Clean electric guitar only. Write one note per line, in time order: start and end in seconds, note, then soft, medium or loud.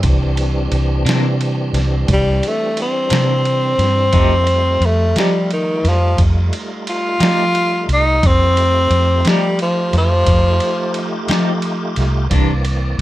1.05 1.27 C3 medium
1.05 1.27 E3 medium
1.05 1.26 A#3 medium
1.05 1.26 D4 medium
3.10 3.32 C3 soft
3.10 3.32 E3 medium
3.10 3.31 A#3 medium
3.10 3.31 D4 medium
4.12 4.33 F3 medium
4.12 4.34 A3 medium
4.12 4.34 D#4 medium
4.12 4.34 G4 medium
5.16 5.37 F3 medium
5.16 5.37 A3 medium
5.16 5.37 D#4 medium
5.16 5.36 G4 medium
7.20 7.42 F3 medium
7.20 7.42 A3 medium
7.20 7.41 D#4 medium
7.20 7.41 G4 medium
9.24 9.46 F3 medium
9.24 9.46 A3 medium
9.24 9.46 D#4 medium
9.24 9.45 G4 medium
11.29 11.51 F3 medium
11.29 11.50 A3 medium
11.29 11.50 D#4 medium
11.29 11.50 G4 medium
12.31 12.51 C3 medium
12.31 12.52 E3 medium
12.31 12.52 A#3 medium
12.31 12.52 D4 medium